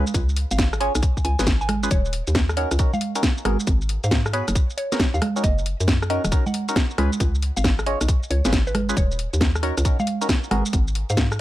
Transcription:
0.07 shaker
0.14 C#2, kick, closed hi-hat, shaker
0.29 shaker
0.36 open hi-hat
0.51 G#1 F5, closed hi-hat, shaker
0.58 kick, snare, closed hi-hat, shaker
0.73 cross-stick, shaker
0.80 C#4 F4 G#4 C#5 G#5, open hi-hat
0.95 B1, cross-stick, closed hi-hat, shaker
1.03 kick, closed hi-hat, shaker
1.17 kick, shaker
1.25 C#2 G#5, open hi-hat
1.39 G#1 C#4 F4 G#4 B4, snare, closed hi-hat, shaker
1.47 kick, snare, closed hi-hat, shaker
1.61 G#5, shaker
1.69 cross-stick, open hi-hat, high conga
1.83 C#4 F4 G#4 B4, shaker
1.91 D#1 C#5, kick, closed hi-hat, shaker
2.05 shaker
2.13 open hi-hat
2.27 D#2, closed hi-hat, shaker
2.35 kick, snare, closed hi-hat, shaker
2.49 cross-stick, shaker
2.57 C#4 D#4 F#4 A#4 C#5, open hi-hat
2.71 C#2, cross-stick, closed hi-hat, shaker
2.79 C#4 D#4 F#4 A#4, kick, closed hi-hat, shaker
2.93 F5, high conga, shaker
3.01 open hi-hat
3.15 C#4 D#4 F#4 A#4, closed hi-hat, shaker
3.23 kick, snare, closed hi-hat, shaker
3.38 shaker
3.45 G#1 B3 F#4 G#4 A#4, cross-stick, open hi-hat, high conga
3.60 shaker
3.67 G#1, kick, closed hi-hat, shaker
3.82 shaker
3.89 open hi-hat
4.04 G#2 F5, closed hi-hat, shaker
4.11 kick, snare, closed hi-hat, shaker
4.26 cross-stick, shaker
4.33 B3 F#4 G#4 B4 C#5, open hi-hat
4.48 F#1, cross-stick, closed hi-hat, shaker
4.55 kick, closed hi-hat, shaker
4.70 shaker
4.78 C#5, open hi-hat
4.92 B3 F#4 G#4 A#4, snare, closed hi-hat, shaker
5.00 kick, snare, closed hi-hat, shaker
5.14 D#2 F5, shaker
5.22 cross-stick, open hi-hat, high conga
5.36 C#4 D#4 F#4 A#4, shaker
5.44 F#1 D#5, kick, closed hi-hat, shaker
5.58 shaker
5.66 open hi-hat
5.80 F#2, closed hi-hat, shaker
5.88 kick, snare, closed hi-hat, shaker
6.02 cross-stick, shaker
6.10 C#4 D#4 F#4 A#4 D#5, open hi-hat
6.24 D#1, cross-stick, closed hi-hat, shaker
6.32 C#4 D#4 F#4 A#4, kick, closed hi-hat, shaker
6.46 F#5, high conga, shaker
6.54 open hi-hat
6.68 C#4 D#4 F#4 A#4, closed hi-hat, shaker
6.76 kick, snare, closed hi-hat, shaker
6.91 shaker
6.98 C#2 C#4 F4 G#4 B4, cross-stick, open hi-hat, high conga
7.13 shaker
7.20 C#2, kick, closed hi-hat, shaker
7.35 shaker
7.42 open hi-hat
7.57 G#1 F5, closed hi-hat, shaker
7.64 kick, snare, closed hi-hat, shaker
7.79 cross-stick, shaker
7.86 C#4 F4 G#4 C#5 D#5, open hi-hat
8.01 B1, cross-stick, closed hi-hat, shaker
8.08 kick, closed hi-hat, shaker
8.23 shaker
8.31 C#2 C#5, open hi-hat
8.45 G#1 C#4 F4 G#4 B4, snare, closed hi-hat, shaker
8.53 kick, snare, closed hi-hat, shaker
8.67 B4, shaker
8.75 cross-stick, open hi-hat, high conga
8.89 C#4 F4 G#4 B4, shaker
8.97 D#1 C#5, kick, closed hi-hat, shaker
9.11 shaker
9.19 open hi-hat
9.33 D#2, closed hi-hat, shaker
9.41 kick, snare, closed hi-hat, shaker
9.55 cross-stick, shaker
9.63 C#4 D#4 F#4 A#4 C#5, open hi-hat
9.78 C#2, cross-stick, closed hi-hat, shaker
9.85 C#4 D#4 F#4 A#4, kick, closed hi-hat, shaker
10.00 F5, high conga, shaker
10.07 open hi-hat
10.21 C#4 D#4 F#4 A#4, closed hi-hat, shaker
10.29 kick, snare, closed hi-hat, shaker
10.44 shaker
10.51 G#1 B3 F#4 G#4 A#4, cross-stick, open hi-hat, high conga
10.66 shaker
10.73 G#1, kick, closed hi-hat, shaker
10.88 shaker
10.95 open hi-hat
11.10 G#2 F5, closed hi-hat, shaker
11.17 kick, snare, closed hi-hat, shaker
11.32 cross-stick, shaker

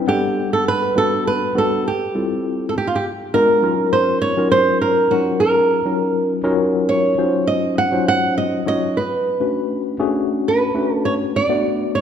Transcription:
0.07 G3 B3 D4 G4 A4 F#5
0.53 A4
0.68 B4
0.96 G3 B3 D4 F#4 A4 B4
1.27 B4
1.55 G3 B3 D4 F#4 A4
1.88 G4
2.15 G3 C4 E4 F4 A4
2.69 A4
2.78 G4
2.87 F4
2.96 G4
3.34 G#3 B3 D4 F4 A#4
3.62 F#3 C#4 D#4 F4 A#4
3.93 C5
4.22 C#5
4.37 F#3 C#4 D#4 F4 A#4
4.52 C5
4.82 A#4
5.11 F#3 C#4 D#4 F4 F#4 A#4
5.40 A#4
5.85 F#3 C#4 D#4 F4 A#4
6.44 F#3 C#4 D#4 F4 A#4
6.89 C#5
7.18 F#3 C#4 D#4 F4 C5
7.47 D#5
7.78 F#5
7.92 F#3 C#4 D#4 F4 C5
8.08 F#5
8.38 D#5
8.66 F#3 C#4 D#4 F4 C#5 D#5
8.97 B4
9.40 A3 C#4 D4 F#4 B4
9.99 A3 C#4 D4 F#4 G#4
10.48 B4
10.74 A3 C#4 D4 F#4 B4
10.94 A4
11.05 C#5
11.36 D5
11.49 A3 B3 D4 F#4 D5
11.95 C#5

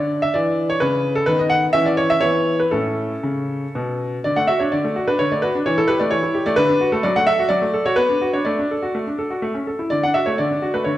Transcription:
Already playing: D3 D4 D5
0.22 E5
0.34 E3 D5
0.70 C#5
0.80 C#3 B4
1.15 A4
1.26 D#3 B3 B4
1.39 D#5
1.50 F#5
1.73 E3 C#4 E5
1.86 D5
1.97 C#5
2.10 E5
2.21 E3 B3 C#5
2.60 B4
2.71 A2 C#4 A4
3.23 C#3
3.75 B2
4.24 D3 D5
4.36 A3 F#5
4.47 F#4 E5
4.59 D4 C#5
4.72 D3 D5
4.84 A3
4.96 F#4
5.08 D4 B4
5.19 D3 C#5
5.32 A3 D5
5.42 F#4 B4
5.55 D4
5.66 E3 C#5
5.78 E4 A4
5.88 G4 B4
6.00 A3 D5
6.11 E3 C#5
6.23 E4
6.35 G4
6.46 A3 D5
6.56 D3 B4
6.69 D4
6.81 F#4
6.92 A3 A4
7.03 F#3 D5
7.16 A3 F#5
7.27 A4 E5
7.39 F#4
7.49 F#3 D5
7.62 A3
7.74 A4
7.86 F#4 C#5
7.96 B3 B4
8.09 D4
8.21 F#4
8.33 D4 C#5
8.45 A3 D5
8.59 D4
8.71 A4
8.82 F#4
8.95 A3
9.07 D4
9.19 A4
9.30 F#4
9.42 A3
9.55 C#4
9.67 A4
9.79 E4
9.90 D3 D5
10.03 D4 F#5
10.14 F#4 E5
10.26 A3 C#5
10.38 D3 D5
10.51 D4
10.62 F#4
10.74 A3 B4
10.84 D3 C#5

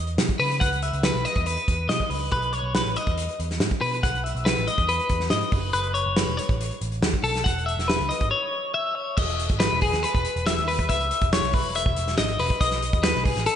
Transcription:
Already playing: E2
0.07 closed hi-hat
0.17 B2, snare, closed hi-hat
0.29 kick, closed hi-hat
0.39 C#3 B4, open hi-hat
0.52 closed hi-hat
0.60 C#2 F#5, kick, closed hi-hat
0.73 closed hi-hat
0.82 E5, closed hi-hat
0.93 C#2, closed hi-hat
1.03 B4, snare, closed hi-hat
1.14 B1, closed hi-hat
1.25 D#5, closed hi-hat
1.35 E2, kick, closed hi-hat
1.46 B4, closed hi-hat
1.57 closed hi-hat
1.68 E2, kick, closed hi-hat
1.89 B2 D#5, snare, closed hi-hat
2.00 kick, closed hi-hat
2.10 C#2 B4, open hi-hat
2.31 B1 B4, kick, closed hi-hat
2.42 closed hi-hat
2.53 C#5, closed hi-hat
2.62 B1
2.75 B4, snare, closed hi-hat
2.85 A1, closed hi-hat
2.96 D#5, closed hi-hat
3.07 E2, kick, closed hi-hat
3.18 closed hi-hat
3.29 closed hi-hat
3.40 E2, closed hi-hat
3.51 snare, closed hi-hat
3.59 G#2, snare, closed hi-hat
3.71 kick, closed hi-hat
3.81 B2 B4, open hi-hat
3.93 closed hi-hat
4.03 B1 F#5, kick, closed hi-hat
4.15 closed hi-hat
4.24 E5, closed hi-hat
4.35 B1, closed hi-hat
4.45 B4, snare, closed hi-hat
4.57 A1, closed hi-hat
4.67 D#5, closed hi-hat
4.78 E2, kick, closed hi-hat
4.89 B4, closed hi-hat
5.00 closed hi-hat
5.09 E2, kick, closed hi-hat
5.20 snare
5.30 G#2 D#5, snare, closed hi-hat
5.41 closed hi-hat
5.52 F#1 B4, kick, open hi-hat
5.73 F#1 B4, closed hi-hat
5.84 closed hi-hat
5.94 C#5, closed hi-hat
6.06 F#1
6.17 B4, snare, closed hi-hat
6.27 E1, closed hi-hat
6.37 C#5, closed hi-hat
6.49 A1, kick, closed hi-hat
6.61 closed hi-hat
6.71 closed hi-hat
6.81 A1, closed hi-hat
6.92 closed hi-hat
7.02 D#2, snare, closed hi-hat
7.14 kick, closed hi-hat
7.23 B1 A4, open hi-hat
7.36 snare, closed hi-hat
7.44 E1 F#5, kick, closed hi-hat
7.58 closed hi-hat
7.66 E5, closed hi-hat
7.77 E1, snare, closed hi-hat
7.88 B4, snare, closed hi-hat
8.00 C#2, closed hi-hat
8.09 D#5, closed hi-hat
8.20 G#1, kick, closed hi-hat
8.31 C#5
8.74 E5
8.95 C#5
9.17 E1 D#5, kick, crash
9.29 closed hi-hat
9.39 closed hi-hat
9.49 G#1, kick, closed hi-hat
9.60 B4, snare, closed hi-hat
9.72 E1
9.81 G#4, kick, open hi-hat
9.93 D#2, snare, closed hi-hat
10.03 B4, closed hi-hat
10.14 E1, kick, closed hi-hat
10.25 closed hi-hat
10.36 E1, closed hi-hat
10.46 E5, snare, closed hi-hat
10.58 D#2, closed hi-hat
10.68 B4, open hi-hat
10.79 D#2, kick, closed hi-hat
10.89 C#2 E5, kick, closed hi-hat
11.00 closed hi-hat
11.11 closed hi-hat
11.21 E1, kick, closed hi-hat
11.33 C#5, snare, closed hi-hat
11.43 B1, snare, closed hi-hat
11.53 B4, kick, open hi-hat
11.64 E1
11.75 E5, closed hi-hat
11.86 E1, kick
11.96 E1, closed hi-hat
12.08 snare, closed hi-hat
12.18 G#1 D#5, snare, closed hi-hat
12.28 closed hi-hat
12.39 E1 B4, open hi-hat
12.50 kick, closed hi-hat
12.61 B1 D#5, kick, closed hi-hat
12.71 snare, closed hi-hat
12.82 closed hi-hat
12.93 D#2, kick, closed hi-hat
13.03 B4, snare, closed hi-hat
13.15 B1, snare
13.24 G#4, kick, open hi-hat
13.36 A1, snare, closed hi-hat
13.46 A4, closed hi-hat

